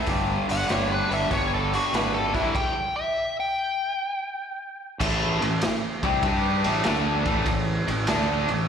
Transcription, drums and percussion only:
0.06 kick loud
0.06 open hi-hat medium
0.49 open hi-hat medium
0.69 snare medium
0.69 open hi-hat medium
1.11 open hi-hat soft
1.31 kick loud
1.31 open hi-hat medium
1.73 open hi-hat soft
1.94 snare loud
1.94 open hi-hat medium
2.35 kick medium
2.35 open hi-hat soft
2.55 kick loud
2.55 crash medium
5.00 kick loud
5.00 crash loud
5.42 ride medium
5.61 snare loud
5.61 ride medium
6.03 kick loud
6.03 ride medium
6.23 kick loud
6.23 ride medium
6.64 ride medium
6.84 snare loud
6.84 ride medium
7.26 kick loud
7.26 ride medium
7.46 kick medium
7.46 ride medium
7.88 ride medium
8.07 snare loud
8.07 ride loud
8.48 ride medium

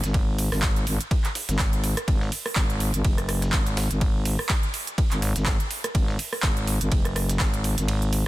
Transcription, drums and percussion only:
0.04 snare soft
0.04 closed hi-hat medium
0.14 kick loud
0.14 ride medium
0.38 open hi-hat loud
0.38 ride medium
0.52 cross-stick medium
0.52 snare soft
0.52 open hi-hat medium
0.62 kick loud
0.62 snare loud
0.62 clap loud
0.62 ride medium
0.76 closed hi-hat soft
0.87 open hi-hat loud
0.87 ride medium
1.01 closed hi-hat medium
1.11 kick loud
1.11 ride medium
1.24 clap soft
1.24 closed hi-hat soft
1.35 snare soft
1.35 open hi-hat loud
1.35 ride medium
1.49 snare soft
1.49 closed hi-hat medium
1.59 kick loud
1.59 snare loud
1.59 clap loud
1.59 ride medium
1.73 closed hi-hat soft
1.84 open hi-hat loud
1.84 ride medium
1.97 cross-stick medium
1.97 closed hi-hat medium
2.08 kick loud
2.08 ride medium
2.21 snare soft
2.32 open hi-hat loud
2.32 ride medium
2.46 cross-stick medium
2.46 open hi-hat medium
2.56 kick loud
2.56 snare loud
2.56 clap loud
2.56 ride medium
2.70 closed hi-hat soft
2.80 open hi-hat loud
2.80 ride medium
2.94 closed hi-hat medium
3.04 kick loud
3.04 ride medium
3.18 cross-stick medium
3.18 closed hi-hat medium
3.29 cross-stick medium
3.29 open hi-hat loud
3.29 ride medium
3.42 snare medium
3.42 closed hi-hat medium
3.52 kick loud
3.52 snare loud
3.52 clap loud
3.52 ride medium
3.66 closed hi-hat soft
3.66 ride soft
3.77 snare loud
3.77 open hi-hat loud
3.77 ride medium
3.91 closed hi-hat medium
4.01 kick loud
4.01 ride medium
4.25 open hi-hat loud
4.25 ride medium
4.39 cross-stick medium
4.39 open hi-hat medium
4.49 kick loud
4.49 snare loud
4.49 clap loud
4.49 ride medium
4.63 closed hi-hat soft
4.74 open hi-hat loud
4.74 ride medium
4.87 closed hi-hat medium
4.98 kick loud
4.98 ride medium
5.11 clap soft
5.11 closed hi-hat medium
5.22 snare soft
5.22 open hi-hat loud
5.22 ride medium
5.36 snare soft
5.36 closed hi-hat medium
5.46 kick loud
5.46 snare loud
5.46 clap loud
5.46 ride medium
5.60 closed hi-hat medium
5.71 open hi-hat loud
5.71 ride medium
5.84 cross-stick medium
5.84 closed hi-hat medium
5.95 kick loud
5.95 ride medium
6.08 snare soft
6.19 open hi-hat loud
6.19 ride medium
6.33 cross-stick medium
6.33 open hi-hat medium
6.43 kick loud
6.43 snare loud
6.43 clap loud
6.43 ride medium
6.57 closed hi-hat soft
6.67 open hi-hat loud
6.67 ride medium
6.81 closed hi-hat medium
6.92 kick loud
6.92 ride medium
7.05 cross-stick medium
7.05 closed hi-hat medium
7.16 cross-stick medium
7.16 open hi-hat loud
7.16 ride medium
7.29 snare soft
7.29 closed hi-hat medium
7.40 kick loud
7.40 snare loud
7.40 clap loud
7.40 ride medium
7.54 closed hi-hat medium
7.54 ride soft
7.64 open hi-hat loud
7.64 ride medium
7.78 snare soft
7.78 closed hi-hat medium
7.88 ride medium
8.02 closed hi-hat soft
8.13 open hi-hat loud
8.13 ride medium

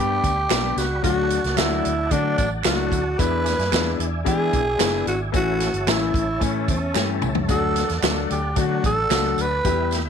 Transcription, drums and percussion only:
0.24 kick medium
0.24 closed hi-hat medium
0.24 tambourine soft
0.50 snare loud
0.50 clap medium
0.50 closed hi-hat loud
0.50 tambourine loud
0.78 snare soft
0.78 closed hi-hat medium
0.78 tambourine medium
1.04 kick loud
1.04 closed hi-hat medium
1.04 tambourine medium
1.30 closed hi-hat medium
1.30 tambourine soft
1.44 snare soft
1.44 closed hi-hat soft
1.57 snare loud
1.57 clap loud
1.57 closed hi-hat medium
1.57 tambourine medium
1.85 closed hi-hat medium
1.85 tambourine soft
2.11 kick medium
2.11 closed hi-hat medium
2.11 tambourine soft
2.38 kick medium
2.38 closed hi-hat medium
2.38 tambourine soft
2.64 snare loud
2.64 clap medium
2.64 closed hi-hat loud
2.64 tambourine medium
2.92 kick medium
2.92 closed hi-hat medium
2.92 tambourine medium
3.19 kick loud
3.19 closed hi-hat medium
3.19 tambourine medium
3.46 snare soft
3.46 closed hi-hat medium
3.46 tambourine soft
3.59 snare soft
3.59 closed hi-hat soft
3.73 snare loud
3.73 clap loud
3.73 closed hi-hat medium
3.73 tambourine loud
4.00 closed hi-hat medium
4.26 kick medium
4.26 closed hi-hat medium
4.26 tambourine soft
4.53 kick medium
4.53 closed hi-hat medium
4.53 tambourine soft
4.80 snare loud
4.80 clap loud
4.80 closed hi-hat loud
4.80 tambourine loud
5.07 closed hi-hat medium
5.07 tambourine medium
5.34 kick loud
5.34 closed hi-hat medium
5.34 tambourine medium
5.60 snare soft
5.60 closed hi-hat medium
5.60 tambourine soft
5.74 closed hi-hat soft
5.87 snare loud
5.87 clap loud
5.87 closed hi-hat medium
5.87 tambourine loud
6.14 kick loud
6.14 closed hi-hat medium
6.41 kick medium
6.41 closed hi-hat medium
6.41 tambourine soft
6.68 kick medium
6.68 closed hi-hat medium
6.68 tambourine soft
6.95 snare medium
6.95 clap medium
6.95 tambourine medium
7.22 mid tom medium
7.22 tambourine medium
7.35 floor tom medium
7.49 kick loud
7.49 closed hi-hat medium
7.49 tambourine medium
7.76 snare soft
7.76 closed hi-hat medium
7.76 tambourine soft
7.89 snare soft
7.89 closed hi-hat medium
8.03 snare loud
8.03 clap loud
8.03 closed hi-hat medium
8.03 tambourine loud
8.30 closed hi-hat medium
8.30 tambourine soft
8.56 kick medium
8.56 closed hi-hat medium
8.56 tambourine soft
8.84 kick medium
8.84 closed hi-hat medium
8.84 tambourine medium
9.11 snare loud
9.11 clap medium
9.11 closed hi-hat medium
9.11 tambourine medium
9.38 closed hi-hat medium
9.38 tambourine medium
9.65 kick loud
9.65 closed hi-hat medium
9.65 tambourine medium
9.91 snare soft
9.91 closed hi-hat medium
9.91 tambourine soft

